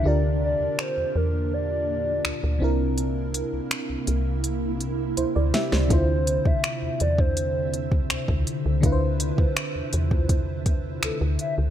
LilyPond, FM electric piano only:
\new Staff \with { instrumentName = "FM electric piano" } { \time 4/4 \key d \minor \tempo 4 = 82 << { r1 | r2. <e' c''>16 d''16 <g' e''>16 <e' c''>16~ | <e' c''>16 r2. r8. | r1 | } \\ { <d d' f' g' bes'>2.~ <d d' f' g' bes'>8 <c c' d' e' bes'>8~ | <c c' d' e' bes'>2.~ <c c' d' e' bes'>8 r8 | <d d' e' f' c''>1 | <d d' e' f' b' c''>1 | } >> }